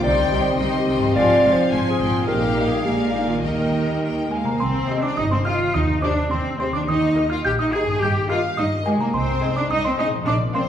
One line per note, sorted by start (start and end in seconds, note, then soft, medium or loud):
0.00 0.11 C2 medium
0.00 1.09 C3 medium
0.00 0.12 C3 medium
0.00 1.15 D#3 medium
0.00 1.11 G3 soft
0.00 0.30 G3 medium
0.00 2.24 C4 medium
0.00 1.13 D#4 soft
0.00 0.29 D#4 medium
0.00 1.11 C5 soft
0.00 0.43 D5 medium
0.00 0.58 G5 medium
0.04 0.30 G5 medium
0.04 0.31 C6 medium
0.31 0.39 C2 medium
0.31 0.39 C3 medium
0.31 0.58 G3 medium
0.31 0.58 D#4 medium
0.31 0.58 G5 soft
0.31 0.58 C6 medium
0.41 0.78 C5 medium
0.59 0.68 C2 medium
0.59 0.68 C3 medium
0.59 0.85 G3 medium
0.59 0.85 D#4 medium
0.59 1.14 D#5 medium
0.59 0.86 G5 medium
0.59 0.86 C6 medium
0.79 1.15 G4 medium
0.87 0.96 C2 medium
0.87 0.95 C3 medium
0.87 1.15 G3 medium
0.87 1.15 D#4 medium
0.87 1.15 G5 medium
0.87 1.15 C6 soft
0.98 2.21 G#2 medium
1.03 2.24 F3 soft
1.07 2.26 F4 soft
1.12 1.23 G#2 medium
1.12 1.42 F3 medium
1.12 2.28 F3 medium
1.12 1.43 F4 medium
1.12 2.28 C5 soft
1.12 1.54 D5 loud
1.12 1.71 F5 medium
1.16 1.24 G#1 medium
1.16 1.42 G#5 medium
1.16 1.42 C6 medium
1.43 1.51 G#1 medium
1.43 1.52 G#2 medium
1.43 1.71 F3 medium
1.43 1.71 F4 medium
1.43 1.71 G#5 medium
1.43 1.71 C6 medium
1.53 1.89 C5 medium
1.71 1.81 G#1 medium
1.71 1.79 G#2 medium
1.71 1.98 F3 medium
1.71 1.99 F4 medium
1.71 1.99 G#5 medium
1.71 1.98 G#5 medium
1.71 1.99 C6 medium
1.90 2.27 G#4 medium
1.99 2.09 G#1 medium
1.99 2.08 G#2 medium
1.99 2.27 F3 medium
1.99 2.27 F4 medium
1.99 2.28 G5 medium
1.99 2.27 G#5 medium
1.99 2.27 C6 medium
2.10 2.66 A#2 medium
2.15 2.71 A#3 soft
2.19 2.83 G4 soft
2.24 2.85 G3 medium
2.24 2.83 D#4 soft
2.24 2.85 D#5 soft
2.24 2.80 D#5 medium
2.24 3.41 F5 medium
2.24 2.81 G5 medium
2.28 2.81 A#1 medium
2.28 2.81 A#2 medium
2.28 2.81 A#3 medium
2.28 2.81 G4 medium
2.28 2.65 A#4 medium
2.66 3.37 A#2 soft
2.66 2.86 G#4 medium
2.72 3.29 A#3 soft
2.76 3.42 G#4 soft
2.81 3.27 G#3 soft
2.81 3.13 G4 medium
2.81 3.44 D5 soft
2.81 3.44 D5 medium
2.85 3.43 A#1 soft
2.85 3.43 A#2 medium
2.85 3.43 A#3 medium
2.85 3.27 D4 medium
2.85 3.43 A#4 medium
2.85 3.43 G#5 soft
3.13 3.28 D#4 medium
3.26 4.54 D#3 soft
3.26 3.35 F4 medium
3.31 4.57 A#3 soft
3.35 4.51 G4 soft
3.40 4.55 D#5 soft
3.40 4.30 D#5 medium
3.44 4.41 D#2 medium
3.44 4.32 D#3 soft
3.44 4.30 G3 soft
3.44 4.39 A#3 medium
3.44 4.30 D#4 medium
3.44 4.32 D#4 soft
3.44 4.39 A#4 soft
3.44 3.96 D#5 soft
3.44 3.97 G5 soft
4.04 4.30 G5 soft
4.31 4.46 G#3 medium
4.31 4.39 G#4 medium
4.31 4.61 F5 soft
4.31 4.45 G#5 soft
4.43 5.68 C3 soft
4.43 4.61 A#3 medium
4.43 4.59 A#5 soft
4.48 5.60 C4 soft
4.48 4.61 A#4 soft
4.52 5.65 G4 soft
4.57 5.03 C4 medium
4.57 5.69 D#5 soft
4.57 5.00 C6 medium
4.61 5.06 C2 medium
4.61 5.04 C5 medium
4.89 5.11 G4 medium
4.89 5.00 G4 medium
4.89 5.11 C5 medium
4.89 5.10 D#5 medium
4.89 5.00 D#5 medium
5.03 5.18 D4 medium
5.03 5.18 D5 medium
5.03 5.17 D6 medium
5.17 5.63 G1 medium
5.17 5.24 D#4 medium
5.17 5.32 D#5 medium
5.17 5.31 D#6 medium
5.31 5.39 C4 medium
5.31 5.46 C5 medium
5.31 5.45 C6 medium
5.45 5.75 F4 medium
5.45 5.68 G4 medium
5.45 5.57 G4 soft
5.45 5.68 C5 medium
5.45 5.68 D#5 medium
5.45 5.57 D#5 medium
5.45 5.54 F5 medium
5.45 5.72 F6 medium
5.57 6.70 D#3 soft
5.62 6.84 C4 soft
5.66 6.79 G4 soft
5.71 6.20 D#2 medium
5.71 6.84 D#5 soft
5.71 5.82 D#5 medium
5.71 6.01 D#6 medium
5.75 6.04 D#4 medium
6.02 6.32 D4 medium
6.02 6.13 G4 soft
6.02 6.25 G4 medium
6.02 6.13 C5 medium
6.02 6.25 C5 medium
6.02 6.11 D5 medium
6.02 6.25 D#5 medium
6.02 6.30 D6 medium
6.31 6.77 D#2 medium
6.31 6.60 C4 medium
6.31 6.39 C5 medium
6.31 6.58 C6 medium
6.60 6.75 C4 medium
6.60 6.70 G4 soft
6.60 6.81 G4 medium
6.60 6.70 C5 medium
6.60 6.66 C5 medium
6.60 6.82 C5 medium
6.60 6.81 D#5 medium
6.60 6.73 C6 medium
6.72 7.96 D#3 soft
6.72 6.81 D4 medium
6.72 6.80 D5 medium
6.72 6.87 D6 medium
6.76 7.88 A#3 soft
6.80 7.92 G4 soft
6.85 7.34 D#2 medium
6.85 7.30 D#4 medium
6.85 7.97 D#5 soft
6.85 7.30 D#5 medium
6.85 7.28 D#6 medium
7.16 7.27 G4 soft
7.16 7.38 G4 medium
7.16 7.38 A#4 medium
7.16 7.38 D#5 medium
7.16 7.27 D#5 soft
7.30 7.46 F4 medium
7.30 7.37 F5 medium
7.30 7.44 F6 medium
7.45 7.90 A#1 medium
7.45 7.51 G4 medium
7.45 7.51 G5 medium
7.45 7.58 G6 medium
7.59 7.74 D#4 medium
7.59 7.66 D#5 medium
7.59 7.72 D#6 medium
7.73 7.84 G4 medium
7.73 7.95 G4 medium
7.73 8.02 G#4 medium
7.73 7.95 A#4 medium
7.73 7.84 D#5 soft
7.73 7.95 D#5 medium
7.73 7.83 G#5 medium
7.73 8.00 G#6 medium
7.84 9.08 G2 soft
7.89 9.10 A#3 soft
7.93 9.12 G4 soft
7.98 8.30 G4 medium
7.98 9.09 D#5 soft
8.02 8.46 G2 medium
8.02 8.11 G5 medium
8.02 8.28 G6 medium
8.29 8.37 F4 medium
8.29 8.40 G4 soft
8.29 8.51 G4 medium
8.29 8.51 A#4 medium
8.29 8.51 D#5 medium
8.29 8.40 D#5 medium
8.29 8.58 F5 medium
8.29 8.56 F6 medium
8.57 9.03 G2 medium
8.57 8.66 D#4 medium
8.57 8.86 D#5 medium
8.57 8.84 D#6 medium
8.85 9.00 G#3 medium
8.85 8.96 G4 medium
8.85 9.07 G4 medium
8.85 9.00 G#4 medium
8.85 9.07 A#4 medium
8.85 9.06 D#5 medium
8.85 8.96 D#5 medium
8.85 8.99 G#5 medium
8.96 10.20 C3 medium
8.96 9.14 A#4 medium
9.01 10.22 G#3 soft
9.01 9.14 A#3 medium
9.01 9.13 A#5 medium
9.05 10.25 D#4 soft
9.10 9.55 C4 medium
9.10 10.27 D#5 soft
9.14 9.59 C2 medium
9.14 9.55 C5 medium
9.14 9.53 C6 medium
9.42 9.53 G#4 medium
9.42 9.64 G#4 medium
9.42 9.53 D#5 medium
9.42 9.63 D#5 medium
9.42 9.63 G#5 medium
9.55 9.62 D4 medium
9.55 9.70 D5 medium
9.55 9.70 D6 medium
9.70 10.15 C2 medium
9.70 9.84 D#4 medium
9.70 9.85 D#5 medium
9.70 9.84 D#6 medium
9.85 9.91 C4 medium
9.85 9.99 C5 medium
9.85 9.98 C6 medium
9.98 10.07 D#4 medium
9.98 10.20 G#4 medium
9.98 10.09 G#4 medium
9.98 10.20 D#5 medium
9.98 10.07 D#5 medium
9.98 10.09 D#5 medium
9.98 10.19 G#5 medium
9.98 10.25 D#6 medium
10.09 10.69 A#2 medium
10.13 10.69 F3 soft
10.18 10.69 F4 soft
10.22 10.69 A#1 medium
10.22 10.69 A#4 soft
10.27 10.35 D4 medium
10.27 10.36 D5 medium
10.27 10.53 D6 medium
10.54 10.64 C4 medium
10.54 10.69 A#4 medium
10.54 10.66 A#4 soft
10.54 10.69 C5 medium
10.54 10.69 D5 medium
10.54 10.66 D5 medium
10.54 10.69 F5 medium
10.54 10.69 C6 medium